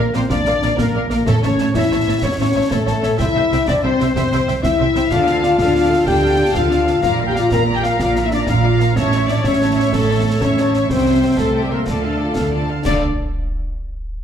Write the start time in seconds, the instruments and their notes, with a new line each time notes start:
Already playing: french horn section A#3, flute section A#4, violin section A#4, clarinet A#4
0.13 double bass section A#1, cello section A#2, french horn section C4, viola section A#4 D5, flute section C5, clarinet C5, violin section C5 F5, snare
0.29 double bass section A#1, cello section A#2, french horn section D4, viola section A#4 D5, clarinet D5, flute section D5, violin section D5 F5, concert bass drum, snare
0.45 double bass section A#1, cello section A#2, viola section A#4 D5, violin section F5, snare
0.62 double bass section A#1, cello section A#2, viola section A#4 D5, violin section F5, snare
0.76 double bass section A#1, cello section A#2, french horn section A#3, viola section A#4 D5, flute section A#4, violin section A#4, concert bass drum, snare
0.81 clarinet A#4, violin section F5
0.94 double bass section A#1, cello section A#2, viola section A#4 D5, violin section F5
1.09 double bass section A#1, cello section A#2, french horn section A#3, clarinet A#4, viola section A#4 D5, flute section A#4, violin section A#4 F5, snare
1.25 double bass section A1, cello section A2, timpani A2, french horn section A3, flute section A4, clarinet A4, violin section A4 E5 A5, viola section C#5, concert bass drum, snare
1.42 double bass section A1, cello section A2, french horn section C#4, clarinet C#5, viola section C#5, violin section C#5 E5 A5, flute section C#5, snare
1.58 double bass section A1, cello section A2, viola section C#5, violin section E5 A5, snare
1.73 double bass section A1, cello section A2, french horn section E4, viola section C#5, clarinet E5, violin section E5 A5, flute section E5, concert bass drum, snare
1.90 double bass section A1, cello section A2, viola section C#5, violin section E5 A5
2.07 double bass section A1, cello section A2, viola section C#5, violin section E5 A5
2.22 double bass section A1, cello section A2, french horn section C#4, clarinet C#5, violin section C#5 E5 A5, flute section C#5, viola section C#5, concert bass drum, snare
2.38 double bass section A1, cello section A2, french horn section C#4, clarinet C#5, flute section C#5, violin section C#5 E5 A5, viola section C#5
2.54 double bass section A1, cello section A2, viola section C#5, violin section E5 A5
2.69 double bass section A1, cello section A2, french horn section A3, violin section A4 E5 A5, flute section A4, clarinet A4, viola section C#5, concert bass drum, snare
2.86 double bass section A1, cello section A2, french horn section A3, violin section A4 E5 A5, flute section A4, clarinet A4, viola section C#5, snare
3.02 double bass section A1, cello section A2, viola section C#5, violin section E5 A5, snare
3.18 double bass section C2, cello section C3, french horn section E4, viola section C5 E5, violin section E5 G5, flute section E5, clarinet E5, concert bass drum, snare
3.35 double bass section C2, cello section C3, viola section C5 E5, violin section E5 G5
3.51 double bass section C2, cello section C3, viola section C5 E5, violin section E5 G5, snare
3.67 double bass section C2, cello section C3, french horn section D4, viola section C5 E5, violin section D5 E5 G5, clarinet D5, flute section D5, concert bass drum, snare
3.82 double bass section C2, cello section C3, french horn section C4, violin section C5 E5 G5, clarinet C5, flute section C5, viola section C5 E5
3.99 double bass section C2, cello section C3, viola section C5 E5, violin section E5 G5, snare
4.14 double bass section C2, cello section C3, french horn section C4, clarinet C5, violin section C5 E5 G5, flute section C5, viola section C5 E5, concert bass drum, snare
4.31 double bass section C2, cello section C3, viola section C5 E5, violin section E5 G5, snare
4.47 double bass section C2, cello section C3, viola section C5 E5, violin section E5 G5, snare
4.63 double bass section C2, cello section C3, french horn section E4, viola section C5 E5, clarinet E5, violin section E5 G5, flute section E5, concert bass drum, snare
4.79 double bass section C2, cello section C3, viola section C5 E5, violin section E5 G5
4.95 double bass section C2, cello section C3, viola section C5 E5, violin section E5 G5, snare
5.10 double bass section D2, cello section D3, french horn section F4, viola section F4 D5, violin section F5 A5, clarinet F5, flute section F5, concert bass drum, snare, crash
5.27 viola section A4 F5, violin section F5 A5, snare
5.43 viola section F4 D5, violin section F5 A5, snare
5.58 double bass section D2, cello section D3, viola section A4 F5, clarinet F5, flute section F5, violin section F5 A5, concert bass drum, snare
5.75 viola section F4 D5, violin section F5 A5
5.90 viola section A4 F5, violin section F5 A5
6.06 double bass section D2, cello section D3, viola section F4 D5, french horn section G4, violin section F5 G5 A5, clarinet G5, flute section G5, concert bass drum, snare
6.23 viola section A4 F5, violin section F5 A5
6.39 viola section F4 D5, violin section F5 A5
6.54 double bass section D2, cello section D3, french horn section F4, viola section A4 F5, clarinet F5, violin section F5 A5, flute section F5, concert bass drum, snare
6.70 viola section F4 D5, violin section F5 A5, snare
6.86 viola section A4 F5, violin section F5 A5, snare
7.02 double bass section A#1, cello section A#2, french horn section F4, viola section F4 D5, clarinet F5, flute section F5, violin section F5 A#5, concert bass drum, snare
7.19 viola section A#4 F5, violin section F5 A#5
7.26 french horn section G4, clarinet G5, flute section G5, violin section G5
7.35 french horn section F4, viola section F4 D5, violin section F5 A#5, clarinet F5, flute section F5, snare
7.51 double bass section A#1, cello section A#2, french horn section A#4, viola section A#4 F5, violin section F5 A#5, clarinet A#5, flute section A#5, concert bass drum, snare
7.68 viola section F4 D5, violin section F5 A#5
7.75 french horn section G4, flute section G5, violin section G5, clarinet G5
7.83 french horn section F4, viola section A#4 F5, violin section F5 A#5, flute section F5, clarinet F5, snare
7.98 double bass section A#1, cello section A#2, french horn section F4, viola section F4 D5, flute section F5, clarinet F5, violin section F5 A#5, concert bass drum, snare
8.03 violin section F5
8.16 viola section A#4 F5, violin section F5 A#5, snare
8.23 french horn section E4, flute section E5, violin section E5, clarinet E5
8.31 french horn section D4, viola section F4 D5, flute section D5, violin section D5 F5 A#5, clarinet D5, snare
8.47 double bass section A#1, cello section A#2, french horn section F4, viola section A#4 F5, flute section F5, violin section F5 A#5, clarinet F5, concert bass drum, snare
8.64 viola section F4 D5, violin section F5 A#5
8.80 viola section A#4 F5, violin section F5 A#5, snare
8.95 double bass section A1, cello section A2, french horn section C#4, flute section C#5, violin section C#5 A5, viola section C#5 E5, clarinet C#5, concert bass drum, snare
9.12 viola section C#5 E5, violin section E5 C#6, snare
9.28 french horn section D4, viola section C#5 E5, violin section C#5 D5 A5, flute section D5, clarinet D5, snare
9.44 double bass section A1, cello section A2, french horn section C#4, flute section C#5, violin section C#5 E5 C#6, viola section C#5 E5, clarinet C#5, concert bass drum, snare
9.61 viola section C#5 E5, violin section C#5 A5
9.77 viola section C#5 E5, violin section E5 C#6
9.92 double bass section A1, cello section A2, french horn section A3, clarinet A4, flute section A4, violin section A4 C#5 A5, viola section C#5 E5, concert bass drum, snare
10.09 viola section C#5 E5, violin section E5 C#6
10.25 viola section C#5 E5, violin section C#5 A5
10.40 double bass section A1, cello section A2, french horn section C#4, flute section C#5, viola section C#5 E5, violin section C#5 E5 C#6, clarinet C#5, concert bass drum, snare
10.57 violin section C#5 A5, viola section C#5 E5, snare
10.74 viola section C#5 E5, violin section E5 C#6, snare
10.89 double bass section C2, cello section C3, french horn section C4, clarinet C5, flute section C5, viola section C5 E5, violin section C5 G5, concert bass drum, snare
11.06 viola section C5 E5, violin section E5 C6
11.22 violin section C5 G5, viola section C5 E5
11.38 double bass section C2, cello section C3, french horn section A3, violin section A4 E5 C6, clarinet A4, flute section A4, viola section C5 E5, concert bass drum, snare
11.55 violin section C5 G5, viola section C5 E5
11.62 french horn section G3, clarinet G4, violin section G4, flute section G4
11.70 french horn section A#3, violin section A#4 E5 C6, clarinet A#4, flute section A#4, viola section C5 E5
11.86 double bass section D2, cello section D3, french horn section A3, viola section F4 D5, violin section A4 F5 A5, clarinet A4, flute section A4, concert bass drum, snare
12.03 viola section A4 F5, violin section F5 A5
12.20 viola section F4 D5, violin section F5 A5
12.36 double bass section D2, cello section D3, viola section A4 F5, violin section F5 A5, concert bass drum, snare
12.51 viola section F4 D5, violin section F5 A5
12.69 viola section A4 F5, violin section F5 A5
12.83 double bass section D2, timpani D3, cello section D3, french horn section D4, viola section A4 D5, violin section D5 F5, flute section D5, clarinet D5, concert bass drum, snare, crash